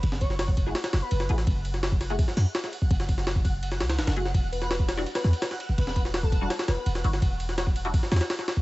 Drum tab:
RD |x---x---x---x---x-x-x---x---x---|x---x---x---x-x-x-------x---x---|x---x---x---x---x---x-x-x-x-x---|x---x---x---x---x-x---x-x---x---|
HH |--------------------------------|--------------------o-----------|--------------------------------|--------------------------------|
SD |--o---o-o-------o-o-o-----o---o-|------o-o---o-----o-o---o-o-----|--o---o-o---------o-o-o-o-o---o-|------o-o---o-o---o-o---o-o-----|
BD |o---o-----o-o-------------------|o---------o-----o-------------o-|o---o-----o-o-------------------|o---------o-------------------o-|

RD |x---x---x---x---x-x-x---x---x---|x---x---x---x-x-x---xxx-x---x---|
HH |--------------------------------|--------------------------------|
SD |--o---o-o-------o-o-o-----o---o-|------o-o---------o-ooo-o-o-o---|
BD |o---o-----o-o-------------------|o---------o-----o-------------o-|